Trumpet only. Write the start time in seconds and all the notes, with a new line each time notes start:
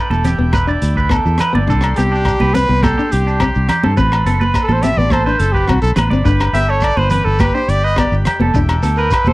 1.96 G4
2.54 B4
2.83 A4
3.12 G4
4.63 A4
4.72 C5
4.83 E5
4.98 D5
5.12 C5
5.25 B4
5.39 A4
5.52 G4
5.68 F#4
5.82 A4
6.54 E5
6.70 C#5
6.83 D5
6.97 C5
7.11 B4
7.25 A4
7.40 B4
7.54 C5
7.69 D5
7.84 D#5
7.99 D5
8.97 A#4
9.12 B4
9.28 C5